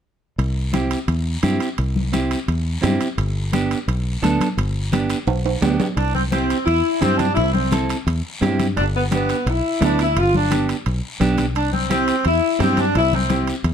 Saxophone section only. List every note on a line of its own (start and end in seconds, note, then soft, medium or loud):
5.97 6.13 D4 medium
6.14 6.22 C4 medium
6.31 6.64 C4 medium
6.66 6.99 E4 loud
7.01 7.19 C4 medium
7.18 7.36 D4 medium
7.34 7.52 E4 medium
7.52 7.86 C4 medium
8.77 8.85 D4 medium
8.96 9.03 B3 medium
9.14 9.45 B3 medium
9.48 9.82 E4 medium
9.83 9.98 D4 medium
10.01 10.16 E4 loud
10.18 10.35 F4 loud
10.36 10.67 D4 medium
11.56 11.72 D4 medium
11.73 11.89 C4 medium
11.91 12.23 C4 medium
12.26 12.58 E4 loud
12.61 12.78 C4 medium
12.79 12.96 D4 medium
12.96 13.12 E4 loud
13.14 13.48 C4 medium